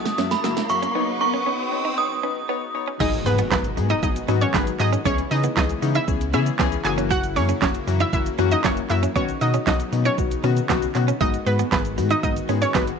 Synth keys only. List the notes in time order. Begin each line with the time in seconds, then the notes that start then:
0.18 A#3 F#4 E5
0.44 A#3 F#4 E5
0.69 A#3 F#4 E5
0.95 B3 D#4 C#5
1.21 B3 D#4 A#4
1.46 B3 D#4 C#5
1.72 B3 D#4 C#5
1.98 B3 D#4 C#5
2.23 B3 D#4 B4
2.49 B3 D#4 C#5
2.74 B3 D#4 C#5
3.00 F#3 B3 D#4 G#4
3.26 F#3 B3 D#4 G#4
3.51 F#3 B3 D#4 A#4
3.77 F#3 B3 D#4 G#4
4.02 F#3 B3 D#4 G#4
4.28 F#3 B3 D#4 F#4
4.54 F#3 B3 D#4 G#4
4.79 F#3 B3 D#4 G#4
5.05 E3 B3 C#4 G#4
5.31 E3 B3 C#4 G#4
5.56 E3 B3 C#4 G#4
5.82 E3 B3 C#4 D#4
6.08 E3 B3 C#4 G#4
6.33 E3 B3 C#4 G#4
6.59 E3 B3 C#4 G#4
6.84 E3 A#3 C#4 F#4
7.36 E3 A#3 C#4 G#4
7.62 E3 A#3 C#4 F#4
7.87 E3 A#3 C#4 F#4
8.13 E3 A#3 C#4 F#4
8.38 E3 A#3 C#4 F#4
8.64 E3 A#3 C#4 F#4
8.90 E3 A#3 C#4 F#4
9.15 D#3 B3 C#4 F#4
9.41 D#3 B3 C#4 F#4
9.67 D#3 B3 C#4 F#4
9.92 D#3 B3 C#4 D#4
10.18 D#3 B3 C#4 F#4
10.44 D#3 B3 C#4 F#4
10.69 D#3 B3 C#4 F#4
10.95 D#3 B3 C#4 F#4
11.20 D#3 G#3 B3 F#4
11.46 D#3 G#3 B3 F#4
11.72 D#3 G#3 B3 G#4
11.97 D#3 G#3 B3 F#4
12.23 D#3 G#3 B3 F#4
12.49 D#3 G#3 B3 G#4
12.74 D#3 G#3 B3 F#4